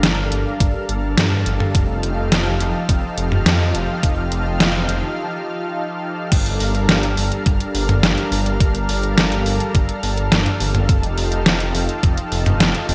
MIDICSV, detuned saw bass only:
0, 0, Header, 1, 2, 480
1, 0, Start_track
1, 0, Key_signature, -2, "minor"
1, 0, Tempo, 571429
1, 1467, Time_signature, 4, 2, 24, 8
1, 10875, End_track
2, 0, Start_track
2, 0, Title_t, "Detuned saw bass"
2, 0, Program_c, 0, 39
2, 27, Note_on_c, 0, 31, 89
2, 247, Note_off_c, 0, 31, 0
2, 268, Note_on_c, 0, 31, 101
2, 377, Note_off_c, 0, 31, 0
2, 508, Note_on_c, 0, 31, 98
2, 617, Note_off_c, 0, 31, 0
2, 747, Note_on_c, 0, 31, 99
2, 967, Note_off_c, 0, 31, 0
2, 987, Note_on_c, 0, 43, 97
2, 1207, Note_off_c, 0, 43, 0
2, 1227, Note_on_c, 0, 31, 94
2, 1337, Note_off_c, 0, 31, 0
2, 1468, Note_on_c, 0, 29, 96
2, 1687, Note_off_c, 0, 29, 0
2, 1707, Note_on_c, 0, 29, 102
2, 1927, Note_off_c, 0, 29, 0
2, 1947, Note_on_c, 0, 29, 88
2, 2167, Note_off_c, 0, 29, 0
2, 2188, Note_on_c, 0, 29, 109
2, 2297, Note_off_c, 0, 29, 0
2, 2427, Note_on_c, 0, 29, 100
2, 2537, Note_off_c, 0, 29, 0
2, 2668, Note_on_c, 0, 29, 102
2, 2887, Note_off_c, 0, 29, 0
2, 2907, Note_on_c, 0, 41, 98
2, 3127, Note_off_c, 0, 41, 0
2, 3147, Note_on_c, 0, 29, 94
2, 3257, Note_off_c, 0, 29, 0
2, 3387, Note_on_c, 0, 29, 100
2, 3607, Note_off_c, 0, 29, 0
2, 3627, Note_on_c, 0, 29, 96
2, 3847, Note_off_c, 0, 29, 0
2, 3867, Note_on_c, 0, 29, 90
2, 4087, Note_off_c, 0, 29, 0
2, 4107, Note_on_c, 0, 29, 101
2, 4217, Note_off_c, 0, 29, 0
2, 5307, Note_on_c, 0, 31, 97
2, 5527, Note_off_c, 0, 31, 0
2, 5547, Note_on_c, 0, 31, 100
2, 5767, Note_off_c, 0, 31, 0
2, 5788, Note_on_c, 0, 31, 86
2, 6007, Note_off_c, 0, 31, 0
2, 6027, Note_on_c, 0, 31, 105
2, 6137, Note_off_c, 0, 31, 0
2, 6267, Note_on_c, 0, 31, 103
2, 6377, Note_off_c, 0, 31, 0
2, 6506, Note_on_c, 0, 31, 85
2, 6727, Note_off_c, 0, 31, 0
2, 6747, Note_on_c, 0, 31, 109
2, 6857, Note_off_c, 0, 31, 0
2, 6986, Note_on_c, 0, 31, 106
2, 7206, Note_off_c, 0, 31, 0
2, 7228, Note_on_c, 0, 31, 99
2, 7448, Note_off_c, 0, 31, 0
2, 7467, Note_on_c, 0, 31, 96
2, 7687, Note_off_c, 0, 31, 0
2, 7707, Note_on_c, 0, 31, 90
2, 7927, Note_off_c, 0, 31, 0
2, 7947, Note_on_c, 0, 31, 101
2, 8057, Note_off_c, 0, 31, 0
2, 8187, Note_on_c, 0, 31, 101
2, 8297, Note_off_c, 0, 31, 0
2, 8428, Note_on_c, 0, 31, 81
2, 8648, Note_off_c, 0, 31, 0
2, 8668, Note_on_c, 0, 31, 104
2, 8778, Note_off_c, 0, 31, 0
2, 8908, Note_on_c, 0, 31, 103
2, 9127, Note_off_c, 0, 31, 0
2, 9148, Note_on_c, 0, 29, 96
2, 9367, Note_off_c, 0, 29, 0
2, 9387, Note_on_c, 0, 29, 102
2, 9607, Note_off_c, 0, 29, 0
2, 9628, Note_on_c, 0, 29, 91
2, 9847, Note_off_c, 0, 29, 0
2, 9868, Note_on_c, 0, 29, 101
2, 9977, Note_off_c, 0, 29, 0
2, 10108, Note_on_c, 0, 29, 97
2, 10217, Note_off_c, 0, 29, 0
2, 10347, Note_on_c, 0, 29, 81
2, 10567, Note_off_c, 0, 29, 0
2, 10586, Note_on_c, 0, 29, 106
2, 10697, Note_off_c, 0, 29, 0
2, 10826, Note_on_c, 0, 29, 105
2, 10875, Note_off_c, 0, 29, 0
2, 10875, End_track
0, 0, End_of_file